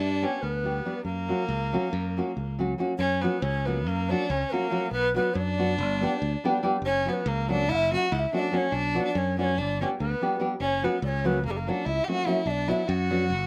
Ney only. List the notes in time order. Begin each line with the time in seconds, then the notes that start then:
Already playing: D5
0.22 C#5 D5
0.42 B4
1.04 A#4
2.98 C#5
3.22 B4
3.42 C#5
3.66 B4
3.84 B4
3.89 A#4
4.10 D5
4.29 C#5
4.52 A#4
4.92 B4
5.16 B4
5.34 D5
6.86 C#5
7.09 C#5
7.13 B4
7.28 A#4
7.51 D5
7.71 F#5
7.75 E5
7.94 F#5
8.15 F#5
8.19 E5
8.36 D5 E5
8.57 C#5
8.74 D5
9.08 D5
9.18 C#5
9.39 D5
9.44 C#5
9.58 D5
9.81 C#5
9.99 B4
10.61 D5
10.66 C#5
10.84 B4
11.03 D5
11.08 C#5
11.26 B4
11.46 A#4
11.50 G4
11.57 A#4
11.69 D5
11.89 E5
12.05 F#5 G5
12.28 E5
12.46 E5
12.50 D5
12.71 E5
12.88 G5
12.92 F#5